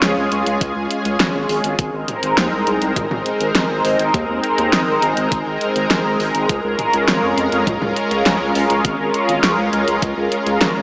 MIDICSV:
0, 0, Header, 1, 4, 480
1, 0, Start_track
1, 0, Tempo, 588235
1, 1460, Time_signature, 4, 2, 24, 8
1, 8830, End_track
2, 0, Start_track
2, 0, Title_t, "Analog synth pad"
2, 0, Program_c, 0, 89
2, 0, Note_on_c, 0, 56, 85
2, 0, Note_on_c, 0, 61, 75
2, 0, Note_on_c, 0, 65, 74
2, 0, Note_on_c, 0, 68, 93
2, 1427, Note_off_c, 0, 56, 0
2, 1427, Note_off_c, 0, 61, 0
2, 1427, Note_off_c, 0, 65, 0
2, 1440, Note_off_c, 0, 68, 0
2, 1459, Note_on_c, 0, 56, 85
2, 1459, Note_on_c, 0, 60, 75
2, 1459, Note_on_c, 0, 63, 75
2, 1459, Note_on_c, 0, 70, 90
2, 5267, Note_off_c, 0, 60, 0
2, 5267, Note_off_c, 0, 63, 0
2, 5301, Note_on_c, 0, 61, 74
2, 5301, Note_on_c, 0, 65, 76
2, 8830, Note_off_c, 0, 56, 0
2, 8830, Note_off_c, 0, 61, 0
2, 8830, Note_off_c, 0, 65, 0
2, 8830, Note_off_c, 0, 70, 0
2, 8830, End_track
3, 0, Start_track
3, 0, Title_t, "Analog synth bass"
3, 0, Program_c, 1, 38
3, 20, Note_on_c, 1, 37, 112
3, 114, Note_off_c, 1, 37, 0
3, 140, Note_on_c, 1, 37, 77
3, 233, Note_off_c, 1, 37, 0
3, 260, Note_on_c, 1, 37, 96
3, 353, Note_off_c, 1, 37, 0
3, 379, Note_on_c, 1, 37, 85
3, 473, Note_off_c, 1, 37, 0
3, 500, Note_on_c, 1, 37, 107
3, 593, Note_off_c, 1, 37, 0
3, 619, Note_on_c, 1, 37, 80
3, 713, Note_off_c, 1, 37, 0
3, 859, Note_on_c, 1, 37, 82
3, 953, Note_off_c, 1, 37, 0
3, 980, Note_on_c, 1, 32, 94
3, 1074, Note_off_c, 1, 32, 0
3, 1099, Note_on_c, 1, 32, 80
3, 1193, Note_off_c, 1, 32, 0
3, 1219, Note_on_c, 1, 32, 94
3, 1313, Note_off_c, 1, 32, 0
3, 1339, Note_on_c, 1, 32, 88
3, 1433, Note_off_c, 1, 32, 0
3, 1459, Note_on_c, 1, 32, 109
3, 1553, Note_off_c, 1, 32, 0
3, 1579, Note_on_c, 1, 32, 78
3, 1673, Note_off_c, 1, 32, 0
3, 1819, Note_on_c, 1, 32, 81
3, 1913, Note_off_c, 1, 32, 0
3, 1939, Note_on_c, 1, 39, 104
3, 2033, Note_off_c, 1, 39, 0
3, 2060, Note_on_c, 1, 36, 79
3, 2154, Note_off_c, 1, 36, 0
3, 2180, Note_on_c, 1, 36, 94
3, 2274, Note_off_c, 1, 36, 0
3, 2299, Note_on_c, 1, 36, 78
3, 2393, Note_off_c, 1, 36, 0
3, 2419, Note_on_c, 1, 32, 104
3, 2513, Note_off_c, 1, 32, 0
3, 2540, Note_on_c, 1, 32, 80
3, 2634, Note_off_c, 1, 32, 0
3, 2780, Note_on_c, 1, 32, 85
3, 2874, Note_off_c, 1, 32, 0
3, 2899, Note_on_c, 1, 32, 100
3, 2993, Note_off_c, 1, 32, 0
3, 3020, Note_on_c, 1, 32, 81
3, 3114, Note_off_c, 1, 32, 0
3, 3140, Note_on_c, 1, 32, 97
3, 3234, Note_off_c, 1, 32, 0
3, 3260, Note_on_c, 1, 32, 83
3, 3354, Note_off_c, 1, 32, 0
3, 3380, Note_on_c, 1, 39, 106
3, 3473, Note_off_c, 1, 39, 0
3, 3500, Note_on_c, 1, 39, 79
3, 3593, Note_off_c, 1, 39, 0
3, 3740, Note_on_c, 1, 39, 83
3, 3834, Note_off_c, 1, 39, 0
3, 3860, Note_on_c, 1, 32, 108
3, 3954, Note_off_c, 1, 32, 0
3, 3980, Note_on_c, 1, 32, 79
3, 4073, Note_off_c, 1, 32, 0
3, 4101, Note_on_c, 1, 32, 92
3, 4194, Note_off_c, 1, 32, 0
3, 4221, Note_on_c, 1, 32, 82
3, 4314, Note_off_c, 1, 32, 0
3, 4340, Note_on_c, 1, 32, 102
3, 4433, Note_off_c, 1, 32, 0
3, 4460, Note_on_c, 1, 32, 84
3, 4554, Note_off_c, 1, 32, 0
3, 4699, Note_on_c, 1, 32, 83
3, 4793, Note_off_c, 1, 32, 0
3, 4819, Note_on_c, 1, 32, 96
3, 4913, Note_off_c, 1, 32, 0
3, 4939, Note_on_c, 1, 32, 79
3, 5033, Note_off_c, 1, 32, 0
3, 5060, Note_on_c, 1, 32, 95
3, 5154, Note_off_c, 1, 32, 0
3, 5180, Note_on_c, 1, 32, 84
3, 5274, Note_off_c, 1, 32, 0
3, 5300, Note_on_c, 1, 37, 101
3, 5394, Note_off_c, 1, 37, 0
3, 5420, Note_on_c, 1, 37, 80
3, 5514, Note_off_c, 1, 37, 0
3, 5660, Note_on_c, 1, 37, 83
3, 5754, Note_off_c, 1, 37, 0
3, 5780, Note_on_c, 1, 32, 108
3, 5874, Note_off_c, 1, 32, 0
3, 5900, Note_on_c, 1, 41, 77
3, 5993, Note_off_c, 1, 41, 0
3, 6019, Note_on_c, 1, 41, 94
3, 6113, Note_off_c, 1, 41, 0
3, 6139, Note_on_c, 1, 41, 80
3, 6233, Note_off_c, 1, 41, 0
3, 6260, Note_on_c, 1, 37, 104
3, 6353, Note_off_c, 1, 37, 0
3, 6379, Note_on_c, 1, 37, 82
3, 6473, Note_off_c, 1, 37, 0
3, 6619, Note_on_c, 1, 37, 83
3, 6713, Note_off_c, 1, 37, 0
3, 6740, Note_on_c, 1, 37, 102
3, 6833, Note_off_c, 1, 37, 0
3, 6860, Note_on_c, 1, 37, 80
3, 6954, Note_off_c, 1, 37, 0
3, 6980, Note_on_c, 1, 37, 92
3, 7074, Note_off_c, 1, 37, 0
3, 7100, Note_on_c, 1, 37, 85
3, 7194, Note_off_c, 1, 37, 0
3, 7220, Note_on_c, 1, 32, 110
3, 7313, Note_off_c, 1, 32, 0
3, 7340, Note_on_c, 1, 32, 78
3, 7434, Note_off_c, 1, 32, 0
3, 7579, Note_on_c, 1, 32, 83
3, 7673, Note_off_c, 1, 32, 0
3, 7699, Note_on_c, 1, 37, 106
3, 7793, Note_off_c, 1, 37, 0
3, 7819, Note_on_c, 1, 37, 82
3, 7913, Note_off_c, 1, 37, 0
3, 7939, Note_on_c, 1, 37, 91
3, 8033, Note_off_c, 1, 37, 0
3, 8060, Note_on_c, 1, 37, 80
3, 8153, Note_off_c, 1, 37, 0
3, 8180, Note_on_c, 1, 37, 107
3, 8274, Note_off_c, 1, 37, 0
3, 8299, Note_on_c, 1, 37, 83
3, 8393, Note_off_c, 1, 37, 0
3, 8540, Note_on_c, 1, 37, 81
3, 8634, Note_off_c, 1, 37, 0
3, 8659, Note_on_c, 1, 32, 100
3, 8753, Note_off_c, 1, 32, 0
3, 8780, Note_on_c, 1, 32, 76
3, 8830, Note_off_c, 1, 32, 0
3, 8830, End_track
4, 0, Start_track
4, 0, Title_t, "Drums"
4, 19, Note_on_c, 9, 38, 126
4, 19, Note_on_c, 9, 42, 96
4, 100, Note_off_c, 9, 38, 0
4, 100, Note_off_c, 9, 42, 0
4, 259, Note_on_c, 9, 42, 68
4, 341, Note_off_c, 9, 42, 0
4, 379, Note_on_c, 9, 42, 73
4, 461, Note_off_c, 9, 42, 0
4, 499, Note_on_c, 9, 36, 127
4, 499, Note_on_c, 9, 42, 97
4, 581, Note_off_c, 9, 36, 0
4, 581, Note_off_c, 9, 42, 0
4, 739, Note_on_c, 9, 42, 68
4, 821, Note_off_c, 9, 42, 0
4, 859, Note_on_c, 9, 42, 68
4, 940, Note_off_c, 9, 42, 0
4, 979, Note_on_c, 9, 38, 127
4, 979, Note_on_c, 9, 42, 99
4, 1060, Note_off_c, 9, 38, 0
4, 1060, Note_off_c, 9, 42, 0
4, 1219, Note_on_c, 9, 46, 83
4, 1300, Note_off_c, 9, 46, 0
4, 1339, Note_on_c, 9, 42, 75
4, 1420, Note_off_c, 9, 42, 0
4, 1458, Note_on_c, 9, 42, 97
4, 1459, Note_on_c, 9, 36, 126
4, 1540, Note_off_c, 9, 42, 0
4, 1541, Note_off_c, 9, 36, 0
4, 1699, Note_on_c, 9, 42, 74
4, 1699, Note_on_c, 9, 45, 60
4, 1781, Note_off_c, 9, 42, 0
4, 1781, Note_off_c, 9, 45, 0
4, 1819, Note_on_c, 9, 42, 70
4, 1900, Note_off_c, 9, 42, 0
4, 1938, Note_on_c, 9, 38, 127
4, 1938, Note_on_c, 9, 42, 98
4, 2020, Note_off_c, 9, 38, 0
4, 2020, Note_off_c, 9, 42, 0
4, 2178, Note_on_c, 9, 42, 73
4, 2260, Note_off_c, 9, 42, 0
4, 2298, Note_on_c, 9, 42, 69
4, 2380, Note_off_c, 9, 42, 0
4, 2418, Note_on_c, 9, 42, 97
4, 2418, Note_on_c, 9, 45, 90
4, 2419, Note_on_c, 9, 36, 127
4, 2500, Note_off_c, 9, 42, 0
4, 2500, Note_off_c, 9, 45, 0
4, 2501, Note_off_c, 9, 36, 0
4, 2538, Note_on_c, 9, 45, 92
4, 2620, Note_off_c, 9, 45, 0
4, 2659, Note_on_c, 9, 42, 67
4, 2740, Note_off_c, 9, 42, 0
4, 2779, Note_on_c, 9, 42, 65
4, 2860, Note_off_c, 9, 42, 0
4, 2899, Note_on_c, 9, 38, 127
4, 2899, Note_on_c, 9, 42, 100
4, 2980, Note_off_c, 9, 38, 0
4, 2980, Note_off_c, 9, 42, 0
4, 3139, Note_on_c, 9, 46, 78
4, 3221, Note_off_c, 9, 46, 0
4, 3259, Note_on_c, 9, 42, 68
4, 3341, Note_off_c, 9, 42, 0
4, 3379, Note_on_c, 9, 42, 94
4, 3380, Note_on_c, 9, 36, 127
4, 3461, Note_off_c, 9, 36, 0
4, 3461, Note_off_c, 9, 42, 0
4, 3619, Note_on_c, 9, 42, 69
4, 3701, Note_off_c, 9, 42, 0
4, 3739, Note_on_c, 9, 42, 66
4, 3821, Note_off_c, 9, 42, 0
4, 3859, Note_on_c, 9, 38, 126
4, 3859, Note_on_c, 9, 42, 97
4, 3941, Note_off_c, 9, 38, 0
4, 3941, Note_off_c, 9, 42, 0
4, 4099, Note_on_c, 9, 42, 66
4, 4181, Note_off_c, 9, 42, 0
4, 4219, Note_on_c, 9, 42, 70
4, 4301, Note_off_c, 9, 42, 0
4, 4339, Note_on_c, 9, 36, 127
4, 4339, Note_on_c, 9, 42, 94
4, 4421, Note_off_c, 9, 36, 0
4, 4421, Note_off_c, 9, 42, 0
4, 4579, Note_on_c, 9, 42, 62
4, 4661, Note_off_c, 9, 42, 0
4, 4699, Note_on_c, 9, 42, 63
4, 4780, Note_off_c, 9, 42, 0
4, 4819, Note_on_c, 9, 38, 121
4, 4819, Note_on_c, 9, 42, 96
4, 4900, Note_off_c, 9, 38, 0
4, 4900, Note_off_c, 9, 42, 0
4, 5059, Note_on_c, 9, 46, 74
4, 5140, Note_off_c, 9, 46, 0
4, 5179, Note_on_c, 9, 42, 68
4, 5261, Note_off_c, 9, 42, 0
4, 5299, Note_on_c, 9, 36, 125
4, 5299, Note_on_c, 9, 42, 91
4, 5381, Note_off_c, 9, 36, 0
4, 5381, Note_off_c, 9, 42, 0
4, 5539, Note_on_c, 9, 42, 67
4, 5539, Note_on_c, 9, 45, 67
4, 5620, Note_off_c, 9, 42, 0
4, 5620, Note_off_c, 9, 45, 0
4, 5659, Note_on_c, 9, 42, 64
4, 5740, Note_off_c, 9, 42, 0
4, 5779, Note_on_c, 9, 38, 121
4, 5779, Note_on_c, 9, 42, 88
4, 5860, Note_off_c, 9, 38, 0
4, 5860, Note_off_c, 9, 42, 0
4, 6019, Note_on_c, 9, 42, 65
4, 6101, Note_off_c, 9, 42, 0
4, 6139, Note_on_c, 9, 42, 65
4, 6220, Note_off_c, 9, 42, 0
4, 6259, Note_on_c, 9, 36, 127
4, 6259, Note_on_c, 9, 42, 94
4, 6259, Note_on_c, 9, 45, 95
4, 6341, Note_off_c, 9, 36, 0
4, 6341, Note_off_c, 9, 42, 0
4, 6341, Note_off_c, 9, 45, 0
4, 6379, Note_on_c, 9, 45, 97
4, 6461, Note_off_c, 9, 45, 0
4, 6499, Note_on_c, 9, 42, 61
4, 6580, Note_off_c, 9, 42, 0
4, 6619, Note_on_c, 9, 42, 63
4, 6701, Note_off_c, 9, 42, 0
4, 6740, Note_on_c, 9, 38, 123
4, 6740, Note_on_c, 9, 42, 93
4, 6821, Note_off_c, 9, 38, 0
4, 6821, Note_off_c, 9, 42, 0
4, 6979, Note_on_c, 9, 46, 78
4, 7061, Note_off_c, 9, 46, 0
4, 7100, Note_on_c, 9, 42, 68
4, 7181, Note_off_c, 9, 42, 0
4, 7219, Note_on_c, 9, 42, 87
4, 7220, Note_on_c, 9, 36, 119
4, 7301, Note_off_c, 9, 36, 0
4, 7301, Note_off_c, 9, 42, 0
4, 7460, Note_on_c, 9, 42, 65
4, 7541, Note_off_c, 9, 42, 0
4, 7580, Note_on_c, 9, 42, 62
4, 7661, Note_off_c, 9, 42, 0
4, 7699, Note_on_c, 9, 38, 119
4, 7699, Note_on_c, 9, 42, 92
4, 7781, Note_off_c, 9, 38, 0
4, 7781, Note_off_c, 9, 42, 0
4, 7940, Note_on_c, 9, 42, 63
4, 8021, Note_off_c, 9, 42, 0
4, 8059, Note_on_c, 9, 42, 66
4, 8141, Note_off_c, 9, 42, 0
4, 8179, Note_on_c, 9, 42, 92
4, 8180, Note_on_c, 9, 36, 127
4, 8261, Note_off_c, 9, 36, 0
4, 8261, Note_off_c, 9, 42, 0
4, 8419, Note_on_c, 9, 42, 61
4, 8501, Note_off_c, 9, 42, 0
4, 8540, Note_on_c, 9, 42, 64
4, 8621, Note_off_c, 9, 42, 0
4, 8660, Note_on_c, 9, 38, 114
4, 8660, Note_on_c, 9, 42, 93
4, 8741, Note_off_c, 9, 38, 0
4, 8741, Note_off_c, 9, 42, 0
4, 8830, End_track
0, 0, End_of_file